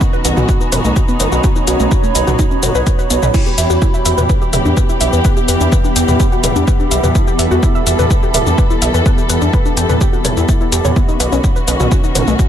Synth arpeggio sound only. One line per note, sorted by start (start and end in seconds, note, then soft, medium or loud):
0.01 0.08 B3 loud
0.13 0.23 B4 medium
0.25 0.31 B4 medium
0.37 0.41 F#4 medium
0.48 0.52 F#4 medium
0.61 0.67 D#4 medium
0.72 0.79 B4 medium
0.85 0.94 A3 medium
0.96 1.03 F#4 medium
1.08 1.15 B3 medium
1.20 1.27 B4 medium
1.32 1.36 F#4 medium
1.44 1.48 F#4 medium
1.56 1.62 D#4 medium
1.68 1.77 F#4 medium
1.80 1.89 A3 medium
1.91 1.98 F#4 medium
2.04 2.13 A3 medium
2.15 2.25 D#5 medium
2.27 2.31 F#4 medium
2.39 2.43 D#4 loud
2.51 2.58 C#4 medium
2.63 2.73 F#4 loud
2.75 2.79 B4 loud
2.87 2.91 B4 loud
2.99 3.03 B4 medium
3.10 3.17 B3 medium
3.23 3.29 B4 loud
3.34 3.38 E4 medium
3.46 3.53 G4 medium
3.58 3.65 E5 medium
3.70 3.74 F#4 loud
3.82 3.88 E4 loud
3.94 4.03 E5 medium
4.05 4.12 E5 medium
4.18 4.22 B4 medium
4.29 4.33 B4 medium
4.42 4.48 G4 medium
4.53 4.60 E5 medium
4.65 4.75 D4 medium
4.77 4.84 B4 medium
4.89 4.96 E4 medium
5.01 5.07 E5 medium
5.13 5.17 B4 medium
5.25 5.29 B4 medium
5.37 5.43 G4 medium
5.48 5.58 B4 medium
5.61 5.70 D4 medium
5.72 5.79 B4 medium
5.84 5.94 D4 medium
5.96 6.06 G5 medium
6.08 6.12 B4 medium
6.20 6.24 G4 loud
6.32 6.38 F#4 medium
6.44 6.54 B4 medium
6.56 6.65 D4 medium
6.67 6.74 B4 medium
6.80 6.89 D4 medium
6.91 7.01 E5 medium
7.03 7.07 B4 medium
7.15 7.19 E4 medium
7.27 7.34 G4 medium
7.39 7.46 E5 medium
7.51 7.55 F#4 loud
7.63 7.69 E4 loud
7.75 7.84 E5 medium
7.87 7.93 E5 medium
7.99 8.03 B4 medium
8.11 8.14 B4 medium
8.23 8.29 G4 medium
8.34 8.41 E5 medium
8.47 8.56 D4 medium
8.58 8.65 B4 medium
8.70 8.77 E4 medium
8.82 8.89 E5 medium
8.94 8.98 B4 medium
9.06 9.10 B4 medium
9.18 9.24 G4 medium
9.30 9.39 B4 medium
9.42 9.51 D4 medium
9.53 9.60 B4 medium
9.66 9.75 D4 medium
9.77 9.87 G5 medium
9.89 9.93 B4 medium
10.01 10.05 G4 loud
10.13 10.19 F#4 medium
10.25 10.29 C#5 medium
10.37 10.43 E4 medium
10.49 10.58 E4 medium
10.61 10.67 E4 medium
10.72 10.76 G4 medium
10.85 10.94 C#5 loud
10.96 11.00 B3 medium
11.08 11.15 D#4 medium
11.20 11.27 B4 medium
11.32 11.36 C#4 loud
11.44 11.50 B3 loud
11.56 11.65 B4 medium
11.68 11.74 B4 medium
11.80 11.84 F#4 medium
11.91 11.95 F#4 medium
12.04 12.10 D#4 medium
12.15 12.22 B4 medium
12.27 12.37 A3 medium
12.39 12.46 F#4 medium